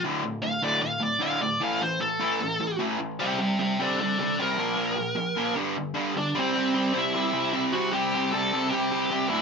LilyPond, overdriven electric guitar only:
\new Staff \with { instrumentName = "Overdriven electric guitar" } { \clef bass \time 4/4 \key a \mixolydian \tempo 4 = 152 <d, a, d>8 <d, a,>8 <d, a,>8 <d, a, d>8 <d, a,>8 <d, a,>8 <d, a, d>8 <d, a,>8 | <a, e a>8 <a, e>8 <a, e>8 <a, e a>8 <a, e>8 <a, e>8 <a, e a>8 <a, e>8 | <c g c'>8 <c g>8 <c g>8 <c g c'>8 <c g>8 <c g>8 <c g c'>8 <bes, f bes>8 | <bes, f bes>8 <bes, f>8 <bes, f>8 <bes, f bes>8 <g, d g>8 <g, d>8 <g, d g>8 <g, d>8 |
\key c \lydian <c g c'>8 <c g c'>8 <c g c'>8 <c g c'>8 <c g c'>8 <c g c'>8 <c g c'>8 <c g c'>8 | <c g c'>8 <c g c'>8 <c g c'>8 <c g c'>8 <c g c'>8 <c g c'>8 <c g c'>8 <d, a, d>8 | }